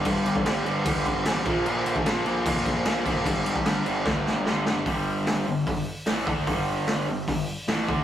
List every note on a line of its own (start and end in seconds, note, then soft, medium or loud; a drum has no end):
0.05 0.25 G1 medium
0.05 0.45 G2 medium
0.05 0.45 D3 medium
0.05 0.45 G3 loud
0.05 kick loud
0.05 crash medium
0.25 0.45 G1 loud
0.25 crash medium
0.35 kick loud
0.46 0.65 G1 medium
0.46 0.64 G2 medium
0.46 0.64 D3 medium
0.46 0.65 G3 loud
0.46 snare loud
0.46 crash medium
0.65 0.84 G1 medium
0.65 0.84 G2 medium
0.65 0.84 D3 loud
0.65 0.84 G3 loud
0.65 crash medium
0.85 1.04 D2 loud
0.85 1.24 G2 loud
0.85 1.25 D3 loud
0.85 1.26 G3 loud
0.85 kick loud
0.85 crash loud
1.05 1.24 G1 medium
1.05 kick medium
1.05 crash medium
1.25 1.44 A1 medium
1.25 1.44 G2 medium
1.25 1.45 D3 medium
1.25 1.45 G3 loud
1.25 snare loud
1.25 crash medium
1.45 1.65 A#1 medium
1.45 1.64 A#2 loud
1.45 1.65 F3 loud
1.45 1.66 A#3 loud
1.45 kick loud
1.45 crash medium
1.65 1.84 A#1 medium
1.65 2.04 A#2 medium
1.65 2.04 F3 medium
1.65 2.05 A#3 medium
1.65 crash medium
1.85 2.04 A#1 loud
1.85 crash medium
1.96 kick loud
2.05 2.24 A#1 medium
2.05 2.23 A#2 medium
2.05 2.24 F3 medium
2.05 2.25 A#3 loud
2.05 snare loud
2.05 crash medium
2.25 2.44 A#1 medium
2.25 2.44 A#2 loud
2.25 2.44 F3 medium
2.25 2.45 A#3 loud
2.25 crash medium
2.45 2.65 F1 loud
2.45 2.84 A#2 loud
2.45 2.85 F3 loud
2.45 2.85 A#3 loud
2.45 kick loud
2.45 crash loud
2.66 2.85 A#1 loud
2.66 kick medium
2.66 crash medium
2.85 3.04 A#1 loud
2.85 3.03 A#2 medium
2.85 3.04 F3 medium
2.85 3.04 A#3 medium
2.85 snare loud
2.85 crash medium
3.04 3.26 F#1 loud
3.04 3.24 A#2 medium
3.04 3.24 F3 medium
3.04 3.24 A#3 loud
3.04 kick loud
3.04 crash medium
3.25 3.45 G1 loud
3.25 3.65 G2 medium
3.25 3.65 D3 medium
3.25 3.65 G3 medium
3.25 kick loud
3.25 crash medium
3.46 3.65 G1 loud
3.46 crash medium
3.56 kick loud
3.66 3.85 G1 medium
3.66 3.85 G2 medium
3.66 3.85 D3 medium
3.66 3.86 G3 loud
3.66 snare loud
3.66 crash medium
3.86 4.05 G1 medium
3.86 4.06 G2 medium
3.86 4.06 D3 medium
3.86 4.07 G3 loud
3.86 crash medium
4.06 4.25 D2 medium
4.06 4.45 G2 loud
4.06 4.46 D3 loud
4.06 4.46 G3 loud
4.06 kick loud
4.06 snare medium
4.26 4.46 G1 medium
4.26 snare medium
4.46 4.66 G1 medium
4.46 4.65 G2 medium
4.46 4.66 D3 medium
4.46 4.66 G3 medium
4.46 snare medium
4.66 4.86 G1 medium
4.66 4.85 G2 medium
4.66 4.86 D3 medium
4.66 4.86 G3 medium
4.66 snare loud
4.86 5.43 G1 medium
4.86 5.46 G2 medium
4.86 5.47 D3 medium
4.86 5.47 G3 medium
4.86 kick medium
4.86 open hi-hat medium
5.27 snare loud
5.27 open hi-hat medium
5.48 5.66 G1 medium
5.48 5.63 G2 medium
5.48 5.63 D3 medium
5.67 5.86 G1 medium
5.67 5.83 G2 medium
5.67 5.83 D3 medium
5.67 kick loud
5.67 open hi-hat medium
6.06 6.27 A1 loud
6.06 6.27 A2 loud
6.06 6.27 E3 loud
6.06 6.26 A3 medium
6.06 snare loud
6.06 open hi-hat medium
6.27 6.46 D2 loud
6.27 6.47 D3 medium
6.27 6.47 A3 medium
6.27 6.47 D4 medium
6.27 kick loud
6.47 7.04 G1 medium
6.47 7.07 G2 medium
6.47 7.08 D3 medium
6.47 7.08 G3 loud
6.47 kick loud
6.47 open hi-hat medium
6.87 snare loud
6.87 open hi-hat medium
7.08 7.27 G1 medium
7.08 7.24 G2 medium
7.08 7.25 D3 medium
7.28 7.47 G1 medium
7.28 7.44 G2 medium
7.28 7.45 D3 medium
7.28 kick loud
7.28 open hi-hat medium
7.68 7.87 A1 medium
7.68 7.88 A2 medium
7.68 7.88 E3 loud
7.68 7.88 A3 loud
7.68 snare loud
7.68 open hi-hat medium
7.88 8.04 D2 medium
7.88 8.04 D3 medium
7.88 8.04 A3 loud
7.88 8.04 D4 loud
7.88 kick loud